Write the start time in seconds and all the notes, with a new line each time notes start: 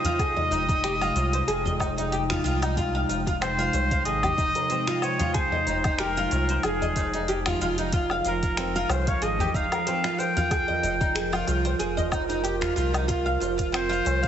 Already playing: C3 F3 G#3 D#4 D#5 G5
0.04 F4, closed hi-hat, tabla ge, cabasa
0.19 G#4, kick, closed hi-hat, cabasa, low woodblock
0.36 D#5, tabla ge
0.51 F1 D#4, closed hi-hat, tabla tin, cabasa
0.68 D#4, kick, closed hi-hat, cabasa
0.84 G4, finger snap, closed hi-hat, cabasa
1.01 F4, cabasa, low woodblock
1.15 C2 F4, closed hi-hat, tabla na, cabasa
1.33 C5, closed hi-hat, tabla tin, cabasa
1.48 F1 G#4, closed hi-hat, cabasa
1.65 D#5, tabla ge, cabasa
1.80 D#4, kick, tabla na, cabasa, low woodblock
1.98 D#4, closed hi-hat, cabasa
2.12 G4, closed hi-hat, cabasa
2.30 F4, finger snap, tabla ge, cabasa
2.44 C2 F4, tabla tin, cabasa
2.62 D#4, closed hi-hat, cabasa, low woodblock
2.77 F4, kick, closed hi-hat, cabasa
2.95 F5
3.09 F1 F4, closed hi-hat, tabla tin, cabasa
3.27 F4, kick, closed hi-hat, cabasa
3.41 C4 C5, finger snap, closed hi-hat, cabasa, low woodblock
3.59 F4, cabasa
3.73 C2 C5, closed hi-hat, tabla na, cabasa
3.90 F5, kick, closed hi-hat, tabla tin, cabasa
4.05 G#1 G#4 D#5, closed hi-hat, cabasa
4.23 G4, tabla ge, cabasa, low woodblock
4.38 F1 D#4, kick, cabasa
4.55 A#4, closed hi-hat, tabla tin, cabasa
4.70 C4, closed hi-hat, cabasa
4.87 F4, finger snap, cabasa
5.01 C5 C#5, cabasa, low woodblock
5.20 F4, closed hi-hat, tabla ge, cabasa
5.33 G#4 C5, kick, closed hi-hat, cabasa
5.51 D#5, tabla ge
5.67 F1 D#4, closed hi-hat, tabla tin, cabasa
5.84 D#4, kick, closed hi-hat, cabasa, low woodblock
5.99 G4 A#4, finger snap, closed hi-hat, cabasa
6.17 F4, cabasa
6.31 C2 F4, closed hi-hat, tabla na, cabasa
6.48 C5, closed hi-hat, tabla tin, cabasa
6.63 F1 G#4, closed hi-hat, cabasa, low woodblock
6.82 D#5, tabla ge, cabasa
6.96 D#4, kick, closed hi-hat, tabla na, cabasa
7.14 D#4, closed hi-hat, cabasa
7.28 G4, closed hi-hat, cabasa
7.46 F4, finger snap, tabla ge, cabasa, low woodblock
7.60 F1 F4, tabla tin, cabasa
7.78 D#4, closed hi-hat, cabasa
7.92 F4, kick, closed hi-hat, cabasa
8.00 A#4
8.10 F5, low woodblock
8.15 F4
8.25 F1 F4 A#4, closed hi-hat, tabla tin, cabasa
8.43 F4, kick, closed hi-hat, cabasa
8.57 C4, finger snap, closed hi-hat, cabasa
8.76 F4, cabasa
8.89 C2 C5, closed hi-hat, tabla na, cabasa, low woodblock
9.07 C#5 F5, kick, closed hi-hat, tabla tin, cabasa
9.21 G#1 G#4 D#5, closed hi-hat, cabasa
9.39 G4, tabla ge, cabasa
9.54 F1 D#4 F5, kick, cabasa
9.72 A#4, closed hi-hat, tabla tin, cabasa, low woodblock
9.87 C4, closed hi-hat, cabasa
10.04 F4, finger snap, cabasa
10.18 C5 G5, cabasa
10.37 F4, closed hi-hat, tabla ge, cabasa
10.51 G#4, kick, closed hi-hat, cabasa, low woodblock
10.68 D#5, tabla ge
10.83 F1 D#4, closed hi-hat, tabla tin, cabasa
11.01 D#4, kick, closed hi-hat, cabasa
11.15 G#4, finger snap, closed hi-hat, cabasa
11.33 F4, cabasa, low woodblock
11.47 C2 F4, closed hi-hat, tabla na, cabasa
11.65 C5, closed hi-hat, tabla tin, cabasa
11.79 F1 G#4, closed hi-hat, cabasa
11.97 D#5, tabla ge, cabasa
12.12 D#4, kick, tabla na, cabasa, low woodblock
12.29 D#4, closed hi-hat, cabasa
12.44 G4, closed hi-hat, cabasa
12.61 F4, finger snap, tabla ge, cabasa
12.76 C2 F4, tabla tin, cabasa
12.94 D#4, closed hi-hat, cabasa, low woodblock
13.08 F4, kick, closed hi-hat, cabasa
13.26 F5
13.40 F1 F4, closed hi-hat, tabla tin, cabasa
13.58 F4, kick, closed hi-hat, cabasa
13.72 C4 C5, finger snap, closed hi-hat, cabasa, low woodblock
13.89 F4, cabasa
14.05 C2 C5, closed hi-hat, tabla na, cabasa
14.23 F5, kick, closed hi-hat, cabasa